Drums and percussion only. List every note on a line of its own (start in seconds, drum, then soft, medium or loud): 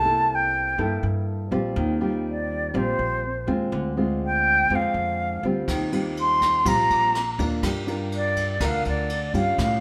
5.68 kick medium
5.68 cross-stick medium
5.68 ride medium
5.92 ride soft
6.17 ride soft
6.41 kick soft
6.41 cross-stick medium
6.41 ride soft
6.66 kick medium
6.66 ride medium
6.90 ride soft
7.15 cross-stick medium
7.15 ride soft
7.39 kick soft
7.39 ride soft
7.63 kick medium
7.63 cross-stick medium
7.63 ride medium
7.88 ride soft
8.12 ride soft
8.36 kick soft
8.36 ride soft
8.60 kick medium
8.60 cross-stick medium
8.60 ride medium
8.85 ride soft
9.09 ride soft
9.34 kick soft
9.34 ride soft
9.58 kick medium
9.58 cross-stick medium
9.58 ride medium